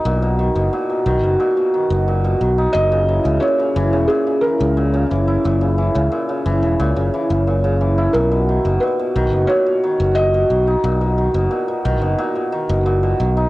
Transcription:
X:1
M:4/4
L:1/16
Q:1/4=89
K:B
V:1 name="Felt piano"
z16 | d4 c4 G2 A4 z2 | z16 | A4 B4 c4 d3 z |
z16 |]
V:2 name="Hammered dulcimer" clef=bass
A,, B,, D, B,, A,, B,, D, B,, A,, B,, D, B,, A,, B,, D, D | A,, C, E, C, A,, C, E, C, A,, C, E, C, A,, C, E, E | A,, C, E, C, A,, C, E, C, A,, C, E, C, A,, C, E, E | A,, B,, D, B,, A,, B,, D, B,, A,, B,, D, B,, A,, B,, D, D |
A,, B,, D, B,, A,, B,, D, B,, A,, B,, D, B,, A,, B,, D, D |]
V:3 name="Fingered electric bass" clef=bass
B,,,3 F,,, z2 B,,, F,,, z3 F,,,3 B,,, z | F,,,3 C,, z2 F,,, E,,, z3 C,,3 F,,, z | F,,,3 C,, z2 F,,, E,,, C,, F,,, z F,,,4- F,,, | B,,,3 F,,, z2 B,,, F,,, z3 F,,,3 B,,, z |
B,,,3 F,,, z2 B,,, F,,, z3 F,,,3 B,,, z |]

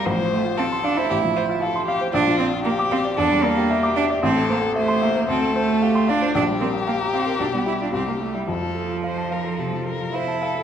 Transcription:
X:1
M:4/4
L:1/16
Q:1/4=113
K:F
V:1 name="Grand piano"
A,,, F, c F f c' f c A,,, F, c F f c' f c | B,,, F, d F f d' f d E,, G, d G e d' e d | A,,, A, c A e c' e c D,, A, c A f c' f c | B,,, G, B G f b f B =B,,, G, G F C,, G, G E |
F,, F, A F f a f A C, F, A F f a f A |]
V:2 name="Violin"
c4 A4 G2 F2 A2 G2 | F4 G4 A4 G4 | A4 c4 A4 G2 F2 | G12 G4 |
A4 c2 B2 A2 B2 c2 A2 |]
V:3 name="Cello"
F,2 A,2 C2 D E6- E z2 | D2 C2 B,2 C2 D2 B,4 D2 | C2 B,2 A,2 B,2 C2 A,4 D2 | D2 C2 B,2 C2 D =B, E D C _B, A, G, |
F,12 E4 |]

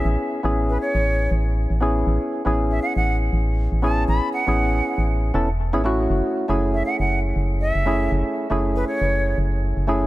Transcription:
X:1
M:4/4
L:1/16
Q:"Swing 16ths" 1/4=119
K:A
V:1 name="Flute"
z4 z B c4 z6 | z4 z e f f2 z4 z a2 | b2 f6 z8 | z4 z e f f2 z3 e4 |
z4 z B c4 z6 |]
V:2 name="Synth stab"
[B,CEG]3 [B,CEG]8- [B,CEG]3 [B,CEG]2- | [B,CEG]3 [B,CEG]8- [B,CEG]3 [B,CEG]2- | [B,CEG]3 [B,CEG]6- [B,CEG] [B,CEA] z2 [B,CEG] [A,CEF]2- | [A,CEF]3 [A,CEG]8- [A,CEG]3 [A,CEG]2- |
[A,CEG]3 [A,CEG]8- [A,CEG]3 [A,CEG]2 |]
V:3 name="FM bass" clef=bass
A,,, z2 A,,,3 z A,,,3 A,,,3 A,,,3 | A,,, z2 A,,,3 z A,,,3 A,,,3 A,,,3 | A,,, z2 A,,,3 z A,,,3 E,,,3 A,,,3 | F,,, z2 F,,,3 z F,,,3 F,,,3 F,,,3 |
F,,, z2 F,,,3 z F,,,3 F,,,3 F,,,3 |]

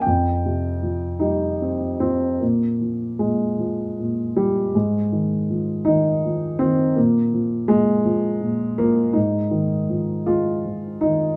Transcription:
X:1
M:6/8
L:1/8
Q:3/8=53
K:Fm
V:1 name="Grand piano"
g3 E2 C | B,2 A,3 G, | A,3 E2 C | B,2 A,3 B, |
E3 F2 E |]
V:2 name="Grand piano" clef=bass
F,, C, F, G, C F, | B,, F, B,, F, B,, F, | A,, E, F, E, F, E, | B,, F, B,, F, B,, F, |
A,, E, F, A, F, E, |]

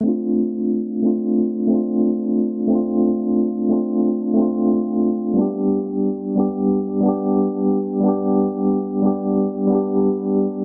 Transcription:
X:1
M:4/4
L:1/8
Q:"Swing 16ths" 1/4=90
K:Ddor
V:1 name="Tine electric piano"
[A,CDF]3 [A,CDF]2 [A,CDF]3 | [A,CDF]3 [A,CDF]2 [A,CDF]3 | [G,B,DG]3 [G,B,DG]2 [G,B,DG]3 | [G,B,DG]3 [G,B,DG]2 [G,B,DG]3 |]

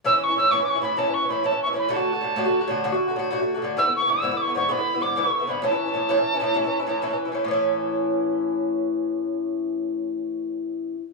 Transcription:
X:1
M:12/8
L:1/16
Q:3/8=129
K:A
V:1 name="Tin whistle"
e'2 c'2 e'2 c'3/2 d'/2 c'2 b2 a2 c'2 b2 a2 c'2 b2 | a12 z12 | e'2 c'2 e'3- e'/2 d'/2 c'2 c'2 b4 d'2 c'4 b2 | a16- a4 z4 |
z24 | z24 |]
V:2 name="Bouzouki"
[A,,E,CE] [E,CE]2 [E,CE] [A,,E,CE]2 [A,,E,CE] [E,CE]2 [E,CE] [A,,E,CE]2 [A,,E,CE] [E,CE]2 [E,CE] [A,,E,CE]2 [A,,E,CE] [E,CE]2 [E,CE] [A,,E,CE]2 | [A,,D,A,F] [D,A,F]2 [D,A,F] [A,,D,A,F]2 [A,,D,A,F] [D,A,F]2 [D,A,F] [A,,D,A,F]2 [A,,D,A,F] [D,A,F]2 [D,A,F] [A,,D,A,F]2 [A,,D,A,F] [D,A,F]2 [D,A,F] [A,,D,A,F]2 | [G,,D,B,E] [D,B,E]2 [D,B,E] [G,,D,B,E]2 [G,,D,B,E] [D,B,E]2 [D,B,E] [G,,D,B,E]2 [G,,D,B,E] [D,B,E]2 [D,B,E] [G,,D,B,E]2 [G,,D,B,E] [D,B,E]2 [D,B,E] [G,,D,B,E]2 | [A,,E,CE] [E,CE]2 [E,CE] [A,,E,CE]2 [A,,E,CE] [E,CE]2 [E,CE] [A,,E,CE]2 [A,,E,CE] [E,CE]2 [E,CE] [A,,E,CE]2 [A,,E,CE] [E,CE]2 [E,CE] [A,,E,CE]2 |
[A,,E,CE]24- | [A,,E,CE]24 |]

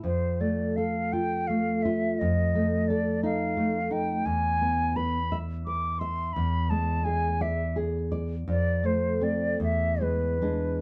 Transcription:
X:1
M:6/8
L:1/8
Q:3/8=57
K:Ephr
V:1 name="Flute"
c d f g f e | _e2 d f2 g | ^g2 b2 d' c' | b a ^g e z2 |
d c d e B2 |]
V:2 name="Nylon-string guitar"
F,, A, A F A, F | F,, A, A _E A, E | E,, B, B e B e | E,, ^G, ^G d G d |
F,, A, [A,C] E,, ^G, [G,D] |]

